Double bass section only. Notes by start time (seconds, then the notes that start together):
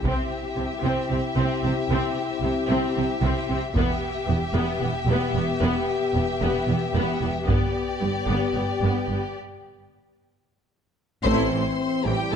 0.04 C2
0.57 C2
0.83 C2
1.09 C2
1.36 C2
1.63 C2
1.89 C2
2.42 C2
2.69 C2
2.96 C2
3.21 C2
3.49 C2
3.75 E1
4.28 E1
4.55 E1
4.81 E1
5.07 E1
5.34 E1
5.61 E1
6.14 E1
6.41 E1
6.68 E1
6.95 E1
7.21 E1
7.48 G1
8.01 G1
8.27 G1
8.54 G1
8.80 G1
9.08 G1
11.25 A1
11.52 A1
12.05 A1